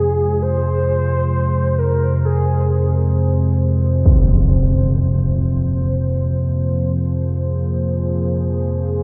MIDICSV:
0, 0, Header, 1, 5, 480
1, 0, Start_track
1, 0, Tempo, 500000
1, 8670, End_track
2, 0, Start_track
2, 0, Title_t, "Soft synth lead"
2, 0, Program_c, 0, 80
2, 0, Note_on_c, 0, 68, 101
2, 401, Note_on_c, 0, 72, 123
2, 415, Note_off_c, 0, 68, 0
2, 1712, Note_on_c, 0, 70, 97
2, 1727, Note_off_c, 0, 72, 0
2, 2159, Note_on_c, 0, 68, 86
2, 2173, Note_off_c, 0, 70, 0
2, 3030, Note_off_c, 0, 68, 0
2, 8670, End_track
3, 0, Start_track
3, 0, Title_t, "Ambient pad"
3, 0, Program_c, 1, 92
3, 0, Note_on_c, 1, 56, 76
3, 0, Note_on_c, 1, 65, 74
3, 0, Note_on_c, 1, 72, 87
3, 3867, Note_on_c, 1, 53, 88
3, 3907, Note_off_c, 1, 56, 0
3, 4533, Note_on_c, 1, 58, 88
3, 5725, Note_on_c, 1, 68, 76
3, 6485, Note_off_c, 1, 65, 0
3, 8670, Note_off_c, 1, 53, 0
3, 8670, Note_off_c, 1, 58, 0
3, 8670, Note_off_c, 1, 68, 0
3, 8670, Note_off_c, 1, 72, 0
3, 8670, End_track
4, 0, Start_track
4, 0, Title_t, "Synth drone"
4, 0, Program_c, 2, 95
4, 0, Note_on_c, 2, 41, 70
4, 0, Note_on_c, 2, 48, 72
4, 8670, Note_off_c, 2, 41, 0
4, 8670, Note_off_c, 2, 48, 0
4, 8670, End_track
5, 0, Start_track
5, 0, Title_t, "Impact"
5, 0, Program_c, 3, 103
5, 3893, Note_on_c, 3, 60, 74
5, 4079, Note_off_c, 3, 60, 0
5, 8670, End_track
0, 0, End_of_file